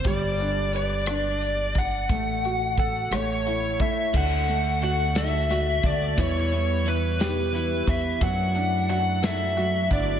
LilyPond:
<<
  \new Staff \with { instrumentName = "Lead electric guitar" } { \time 6/8 \key d \major \tempo 4. = 59 d''4 d''4. fis''8~ | fis''4 fis''8 cis''4 e''8 | fis''4 fis''8 e''4 d''8 | cis''4 b'8 b'4 e''8 |
fis''4 fis''8 e''4 d''8 | }
  \new Staff \with { instrumentName = "Grand piano" } { \time 6/8 \key d \major g8 d'8 b'8 d'4. | a8 fis'8 a'8 a8 e'8 a8 | d8 a8 fis'8 a'8 fis'8 a8 | e8 b8 e'8 g'8 e'8 b8 |
fis8 d'8 fis'8 a'8 fis'8 d'8 | }
  \new Staff \with { instrumentName = "Clean electric guitar" } { \time 6/8 \key d \major r2. | r2. | <d a d' fis'>8 <a d' fis'>8 <d a d' fis'>8 <d a d' fis'>8 <d a d' fis'>8 <a d' fis'>8 | <e, b, e g b fis'>8 <e g b fis'>8 <e g b fis'>8 <e, b, e g b fis'>8 <e g b fis'>8 <e g b fis'>8 |
<fis a d' e'>8 <a d' e'>8 <fis a d' e'>8 <fis a d' e'>8 <fis a d' e'>8 <a d' e'>8 | }
  \new Staff \with { instrumentName = "Upright bass" } { \clef bass \time 6/8 \key d \major g,,2. | a,,4. a,,4 r8 | d,2~ d,8 d,8 | e,2~ e,8 e,8 |
fis,2~ fis,8 g,,8 | }
  \new DrumStaff \with { instrumentName = "Drums" } \drummode { \time 6/8 <hh bd>8 hh8 hh8 <hh ss>8 hh8 <hh bd>8 | <hh bd>8 hh8 <hh bd>8 <hh ss>8 hh8 <hh bd>8 | <cymc bd>8 hh8 hh8 <hh sn>8 <hh sn>8 <hh bd>8 | <hh bd>8 hh8 hh8 <hh sn>8 hh8 <hh bd>8 |
<hh bd>8 hh8 hh8 <hh sn>8 hh8 <hh bd>8 | }
>>